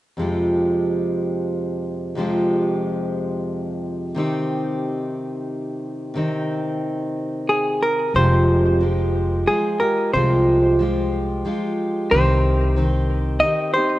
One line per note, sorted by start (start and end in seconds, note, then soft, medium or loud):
0.17 2.14 F2 medium
0.17 2.15 C3 medium
0.17 2.16 F3 medium
0.17 2.17 G#3 medium
0.17 2.18 F4 medium
0.22 2.20 G4 medium
2.15 4.16 F2 medium
2.15 4.13 C3 medium
2.15 4.16 F3 medium
2.15 4.17 G#3 medium
2.15 4.17 F4 medium
2.20 4.19 G4 medium
4.14 6.13 C3 medium
4.14 6.14 D#3 medium
4.14 6.16 C4 medium
4.14 6.16 D#4 medium
4.19 7.69 G4 medium
6.14 8.14 C3 medium
6.14 8.14 D#3 medium
6.14 8.15 C4 medium
6.14 8.15 D#4 medium
7.49 7.83 G#4 medium
7.83 8.13 A#4 medium
8.14 9.43 F1 medium
8.14 8.81 F2 medium
8.14 8.81 C3 medium
8.14 8.79 F3 medium
8.14 8.80 G#3 medium
8.14 8.82 F4 medium
8.14 8.83 G4 medium
8.14 9.44 C5 medium
8.81 9.45 F3 soft
8.81 9.47 G#3 soft
8.81 9.47 F4 soft
8.81 9.50 G4 medium
9.47 9.80 F3 soft
9.47 9.81 G#3 soft
9.47 9.81 F4 soft
9.47 9.81 G#4 medium
9.80 10.13 F3 soft
9.80 10.14 G#3 soft
9.80 10.14 F4 soft
9.80 10.13 G4 soft
9.80 10.11 A#4 medium
10.13 11.41 C2 medium
10.13 10.79 F2 medium
10.13 10.80 C3 medium
10.13 10.78 F3 medium
10.13 10.79 G#3 medium
10.13 10.80 F4 medium
10.13 10.82 G4 medium
10.13 11.08 C5 medium
10.79 11.44 F3 soft
10.79 11.44 G#3 soft
10.79 11.45 F4 medium
10.79 11.47 G4 medium
11.45 12.11 F3 medium
11.45 12.11 G#3 medium
11.45 12.12 F4 medium
11.45 12.13 G4 medium
12.11 13.39 C2 medium
12.11 12.77 C3 medium
12.11 12.75 D#3 medium
12.11 12.77 C4 medium
12.11 12.77 D#4 medium
12.11 12.78 G4 medium
12.11 13.39 C5 medium
12.76 13.42 D#3 medium
12.76 13.43 C4 medium
12.76 13.43 D#4 medium
12.76 13.45 G4 medium
13.40 13.76 D#3 medium
13.40 13.76 C4 medium
13.40 13.73 D#5 medium
13.45 13.75 D#4 medium
13.45 13.74 G4 soft
13.74 13.99 D#4 soft
13.74 13.99 G4 soft
13.74 13.99 C5 medium
13.78 13.99 C4 soft